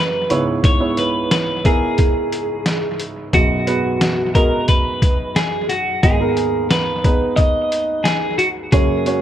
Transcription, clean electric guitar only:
0.00 0.44 B4 loud
0.65 0.98 C#5 loud
0.99 1.31 B4 medium
1.32 1.66 B4 medium
1.66 2.96 G#4 medium
3.34 4.31 F#4 medium
4.35 4.68 A#4 medium
4.69 5.38 B4 medium
5.36 5.67 G#4 medium
5.69 6.01 F#4 medium
6.03 6.67 G#4 medium
6.71 7.36 B4 medium
7.36 8.07 D#5 loud
8.04 8.38 G#4 medium
8.38 8.47 F#4 medium
8.72 9.22 G#4 medium

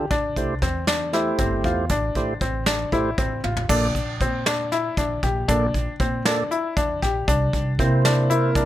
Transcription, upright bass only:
0.00 0.11 E2 medium
0.11 0.36 A1 medium
0.36 0.59 C2 medium
0.62 1.29 E2 medium
1.38 1.61 G1 medium
1.64 1.87 E2 medium
1.90 2.12 A1 medium
2.15 2.38 A1 medium
2.41 2.86 A1 medium
2.92 3.15 A1 medium
3.18 3.41 A1 medium
3.44 3.66 A1 medium
3.69 3.92 A#1 loud
3.95 4.17 A#1 medium
4.21 4.88 A#2 medium
4.97 5.20 A#1 medium
5.23 5.45 A#1 medium
5.49 5.71 A#1 loud
5.74 5.85 A#1 medium
6.00 6.22 A#2 medium
6.77 6.99 F2 medium
7.03 7.25 A#1 medium
7.28 7.50 C2 medium
7.53 7.76 C2 medium
7.79 8.46 C3 medium
8.55 8.65 C2 medium

